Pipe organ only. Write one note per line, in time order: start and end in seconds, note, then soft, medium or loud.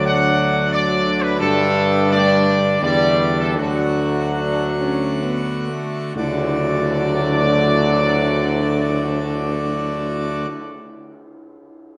0.00 3.54 D3 medium
0.00 1.41 F#3 medium
0.00 3.54 D4 medium
0.00 3.53 D5 medium
1.40 3.57 G3 medium
3.59 6.12 D3 medium
3.59 6.15 A3 medium
3.59 6.12 F#4 medium
3.59 6.13 F#5 medium
6.17 10.46 D3 medium
6.17 10.46 A3 medium
6.17 10.46 F#4 medium
6.17 10.47 D5 medium